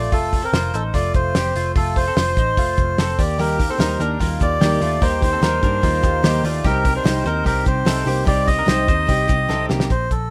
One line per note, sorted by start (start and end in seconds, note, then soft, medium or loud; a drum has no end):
0.00 0.12 A#1 medium
0.00 0.12 A3 medium
0.00 0.11 F4 medium
0.00 0.12 D5 medium
0.12 0.46 F1 loud
0.12 0.42 A3 medium
0.12 0.41 F4 loud
0.12 0.44 A4 loud
0.12 kick loud
0.12 hi-hat pedal medium
0.12 open hi-hat medium
0.33 kick medium
0.33 hi-hat pedal medium
0.33 open hi-hat medium
0.42 0.54 C4 medium
0.42 0.53 A4 medium
0.42 0.75 A#4 medium
0.53 0.70 F1 loud
0.53 0.74 F4 medium
0.53 0.73 C5 medium
0.53 snare loud
0.53 hi-hat pedal medium
0.53 open hi-hat medium
0.74 0.90 A1 medium
0.74 0.95 D#4 medium
0.74 0.83 A4 medium
0.74 0.94 C5 medium
0.74 hi-hat pedal medium
0.74 open hi-hat medium
0.94 1.11 F1 medium
0.94 1.33 A3 medium
0.94 1.32 F4 medium
0.94 1.13 D5 loud
0.94 kick medium
0.94 snare soft
0.94 hi-hat pedal medium
0.94 open hi-hat medium
1.14 1.31 F1 loud
1.14 1.72 C5 loud
1.14 kick loud
1.14 hi-hat pedal medium
1.14 open hi-hat medium
1.35 1.52 F1 loud
1.35 1.56 C4 medium
1.35 1.56 G4 medium
1.35 snare loud
1.35 hi-hat pedal medium
1.35 open hi-hat loud
1.55 1.72 F1 medium
1.55 1.76 A3 medium
1.55 1.75 F4 medium
1.55 hi-hat pedal medium
1.55 open hi-hat medium
1.76 2.09 F1 loud
1.76 2.05 A3 medium
1.76 2.05 F4 medium
1.76 1.97 A4 loud
1.76 kick loud
1.76 hi-hat pedal medium
1.76 open hi-hat medium
1.96 3.22 C5 loud
1.96 kick medium
1.96 hi-hat pedal medium
1.96 open hi-hat medium
2.08 2.17 C4 medium
2.08 2.17 A4 medium
2.17 2.33 F1 loud
2.17 2.38 F4 medium
2.17 2.37 C5 medium
2.17 snare loud
2.17 hi-hat pedal medium
2.17 open hi-hat medium
2.37 2.58 A1 medium
2.37 2.58 D#4 medium
2.37 2.58 C5 medium
2.37 kick loud
2.37 hi-hat pedal medium
2.37 open hi-hat medium
2.57 2.74 F1 loud
2.57 2.96 A3 medium
2.57 2.96 F4 medium
2.57 kick medium
2.57 hi-hat pedal medium
2.57 open hi-hat medium
2.77 2.94 F1 loud
2.77 kick medium
2.77 hi-hat pedal medium
2.77 open hi-hat medium
2.98 3.15 F1 loud
2.98 3.19 C4 medium
2.98 3.19 A4 medium
2.98 snare loud
2.98 hi-hat pedal medium
2.98 open hi-hat medium
3.19 3.69 D#2 medium
3.19 3.39 A#3 medium
3.19 3.38 G4 medium
3.19 3.39 D5 loud
3.19 kick loud
3.19 hi-hat pedal medium
3.19 open hi-hat medium
3.37 3.58 D#3 medium
3.37 3.59 G3 medium
3.37 3.59 A#3 medium
3.37 3.68 A#3 medium
3.37 3.58 D#4 medium
3.37 3.56 G4 medium
3.37 3.68 G4 medium
3.37 3.71 A#4 loud
3.37 hi-hat pedal medium
3.37 open hi-hat medium
3.57 3.77 A#3 soft
3.57 3.78 D#4 medium
3.57 3.79 G4 medium
3.57 kick medium
3.57 hi-hat pedal medium
3.57 open hi-hat medium
3.70 3.80 C4 medium
3.70 3.79 A4 medium
3.70 4.01 C5 loud
3.78 3.96 D#2 loud
3.78 3.99 D#3 medium
3.78 3.99 G3 medium
3.78 3.99 A#3 medium
3.78 3.99 D#4 medium
3.78 4.00 D#4 medium
3.78 3.97 G4 medium
3.78 3.99 A#4 medium
3.78 snare loud
3.78 hi-hat pedal medium
3.78 open hi-hat medium
3.98 4.16 D#2 medium
3.98 4.19 A#3 soft
3.98 4.20 D4 medium
3.98 4.20 D#4 medium
3.98 4.19 G4 medium
3.98 4.20 A#4 medium
3.98 4.19 A#4 medium
3.98 hi-hat pedal medium
3.98 open hi-hat medium
4.19 4.37 D#2 medium
4.19 4.40 G3 medium
4.19 4.41 A#3 medium
4.19 4.59 A#3 medium
4.19 4.41 D#4 medium
4.19 4.58 F4 medium
4.19 4.39 G4 medium
4.19 4.30 A#4 medium
4.19 kick medium
4.19 hi-hat pedal medium
4.19 open hi-hat medium
4.40 4.58 D#2 loud
4.40 4.60 A#3 soft
4.40 4.60 D#4 medium
4.40 4.61 G4 medium
4.40 5.04 D5 loud
4.40 kick loud
4.40 hi-hat pedal medium
4.40 open hi-hat medium
4.60 4.78 D#2 loud
4.60 4.81 D#3 medium
4.60 4.81 G3 medium
4.60 4.81 A#3 medium
4.60 4.82 A#3 medium
4.60 4.81 D#4 medium
4.60 4.81 G4 medium
4.60 4.79 G4 medium
4.60 snare loud
4.60 hi-hat pedal medium
4.60 open hi-hat medium
4.80 4.98 D#2 medium
4.80 5.02 A3 medium
4.80 5.01 A#3 soft
4.80 5.01 D#4 medium
4.80 5.02 F4 medium
4.80 5.01 G4 medium
4.80 hi-hat pedal medium
4.80 open hi-hat medium
5.01 5.35 D#2 loud
5.01 5.22 D#3 medium
5.01 5.22 G3 medium
5.01 5.22 A#3 medium
5.01 5.31 A#3 medium
5.01 5.21 D#4 medium
5.01 5.31 G4 medium
5.01 5.19 G4 medium
5.01 5.22 C5 loud
5.01 kick loud
5.01 hi-hat pedal medium
5.01 open hi-hat medium
5.21 5.41 A#3 soft
5.21 5.41 D#4 medium
5.21 5.42 G4 medium
5.21 6.48 C5 loud
5.21 kick medium
5.21 hi-hat pedal medium
5.21 open hi-hat medium
5.33 5.43 C4 medium
5.33 5.42 A4 medium
5.41 5.59 D#2 loud
5.41 5.62 D#3 medium
5.41 5.62 G3 medium
5.41 5.62 A#3 medium
5.41 5.62 D#4 medium
5.41 5.64 D#4 medium
5.41 5.60 G4 medium
5.41 5.62 A#4 medium
5.41 snare loud
5.41 hi-hat pedal medium
5.41 open hi-hat medium
5.61 5.80 G2 loud
5.61 5.82 A#3 soft
5.61 5.83 D4 medium
5.61 5.82 D#4 medium
5.61 5.82 G4 medium
5.61 5.84 A#4 medium
5.61 kick loud
5.61 hi-hat pedal medium
5.61 open hi-hat medium
5.82 6.00 D#2 loud
5.82 6.03 G3 medium
5.82 6.03 A#3 medium
5.82 6.22 A#3 medium
5.82 6.03 D#4 medium
5.82 6.22 F4 medium
5.82 6.01 G4 medium
5.82 kick medium
5.82 hi-hat pedal medium
5.82 open hi-hat medium
6.02 6.20 D#2 loud
6.02 6.22 A#3 medium
6.02 6.23 D#4 medium
6.02 6.23 G4 medium
6.02 kick loud
6.02 hi-hat pedal medium
6.02 open hi-hat medium
6.23 6.40 D#2 loud
6.23 6.44 D#3 medium
6.23 6.44 G3 medium
6.23 6.44 A#3 medium
6.23 6.45 A#3 medium
6.23 6.44 D#4 medium
6.23 6.44 G4 medium
6.23 6.42 G4 loud
6.23 snare loud
6.23 hi-hat pedal medium
6.23 open hi-hat medium
6.43 6.60 D#2 medium
6.43 6.65 A3 medium
6.43 6.65 A#3 soft
6.43 6.64 D#4 medium
6.43 6.65 F4 medium
6.43 6.64 G4 medium
6.43 6.65 D5 medium
6.43 hi-hat pedal medium
6.43 open hi-hat medium
6.64 6.98 C2 loud
6.64 6.85 C3 medium
6.64 6.85 G3 medium
6.64 6.85 C4 medium
6.64 6.94 C4 medium
6.64 6.84 D#4 medium
6.64 6.94 G4 loud
6.64 6.83 G4 medium
6.64 6.94 A#4 loud
6.64 kick loud
6.64 hi-hat pedal medium
6.64 open hi-hat medium
6.84 7.04 C4 soft
6.84 7.04 D#4 soft
6.84 7.04 G4 medium
6.84 kick medium
6.84 hi-hat pedal medium
6.84 open hi-hat medium
6.95 7.06 D4 medium
6.95 7.05 A#4 medium
6.95 7.24 C5 loud
7.04 7.22 C2 loud
7.04 7.25 C3 medium
7.04 7.25 G3 medium
7.04 7.25 C4 medium
7.04 7.24 D#4 medium
7.04 7.26 D#4 medium
7.04 7.22 G4 medium
7.04 7.25 C5 medium
7.04 snare loud
7.04 hi-hat pedal medium
7.04 open hi-hat medium
7.23 7.42 D#2 medium
7.23 7.44 C4 soft
7.23 7.45 D#4 medium
7.23 7.47 D#4 medium
7.23 7.45 G4 medium
7.23 7.44 A#4 loud
7.23 7.46 C5 medium
7.23 hi-hat pedal medium
7.23 open hi-hat medium
7.44 7.63 C2 loud
7.44 7.65 G3 medium
7.44 7.65 C4 medium
7.44 7.85 C4 medium
7.44 7.64 D#4 medium
7.44 7.84 G4 medium
7.44 7.62 G4 medium
7.44 7.65 A#4 loud
7.44 kick medium
7.44 hi-hat pedal medium
7.44 open hi-hat medium
7.64 7.83 C2 medium
7.64 7.85 C4 medium
7.64 7.85 D#4 soft
7.64 7.85 G4 medium
7.64 8.24 C5 loud
7.64 kick loud
7.64 hi-hat pedal medium
7.64 open hi-hat medium
7.85 8.03 C2 loud
7.85 8.06 C3 medium
7.85 8.06 G3 medium
7.85 8.06 C4 medium
7.85 8.08 C4 medium
7.85 8.05 D#4 medium
7.85 8.04 G4 medium
7.85 8.07 A4 medium
7.85 snare loud
7.85 hi-hat pedal medium
7.85 open hi-hat medium
8.05 8.23 C2 medium
8.05 8.28 A#3 medium
8.05 8.24 C4 soft
8.05 8.25 D#4 medium
8.05 8.25 G4 medium
8.05 8.26 G4 medium
8.05 hi-hat pedal medium
8.05 open hi-hat medium
8.24 8.61 C2 loud
8.24 8.46 C3 medium
8.24 8.47 G3 medium
8.24 8.47 C4 medium
8.24 8.46 D#4 medium
8.24 8.44 G4 medium
8.24 8.56 G4 loud
8.24 8.49 D5 loud
8.24 kick loud
8.24 hi-hat pedal medium
8.24 open hi-hat medium
8.29 8.57 C4 medium
8.46 8.65 C4 soft
8.46 8.66 D#4 medium
8.46 8.66 G4 medium
8.46 9.66 D#5 loud
8.46 kick medium
8.46 hi-hat pedal medium
8.46 open hi-hat medium
8.59 8.69 D4 medium
8.59 8.68 A#4 medium
8.66 8.88 C2 medium
8.66 8.87 C3 medium
8.66 8.88 G3 medium
8.66 8.88 C4 medium
8.66 8.87 D#4 medium
8.66 8.86 G4 medium
8.66 8.87 C5 medium
8.66 snare loud
8.66 hi-hat pedal medium
8.66 open hi-hat loud
8.70 8.88 D#4 medium
8.87 9.05 D#2 medium
8.87 9.06 C4 soft
8.87 9.07 D#4 soft
8.87 9.09 D#4 medium
8.87 9.08 G4 medium
8.87 9.09 C5 medium
8.87 kick loud
8.87 hi-hat pedal medium
8.87 open hi-hat medium
9.06 9.26 C2 loud
9.06 9.28 G3 medium
9.06 9.29 C4 medium
9.06 9.48 C4 medium
9.06 9.28 D#4 medium
9.06 9.26 G4 medium
9.06 9.48 G4 medium
9.06 kick medium
9.06 hi-hat pedal medium
9.06 open hi-hat medium
9.27 9.46 C2 medium
9.27 9.48 C4 medium
9.27 9.48 D#4 medium
9.27 9.49 G4 medium
9.27 kick medium
9.27 hi-hat pedal medium
9.27 open hi-hat medium
9.48 9.66 C2 loud
9.48 9.70 C3 medium
9.48 9.70 G3 medium
9.48 9.70 C4 medium
9.48 9.70 D#4 medium
9.48 9.68 G4 medium
9.48 9.70 A4 medium
9.48 snare medium
9.69 9.87 C2 medium
9.69 9.91 A#3 medium
9.69 9.92 C4 medium
9.69 9.91 D#4 medium
9.69 9.90 G4 medium
9.69 9.91 G4 medium
9.69 snare medium
9.80 snare loud
9.90 10.07 A#1 loud
9.90 10.12 C5 loud
9.90 kick medium
9.90 closed hi-hat medium
10.11 10.30 A#1 medium
10.11 10.30 A4 medium
10.11 kick medium
10.11 closed hi-hat medium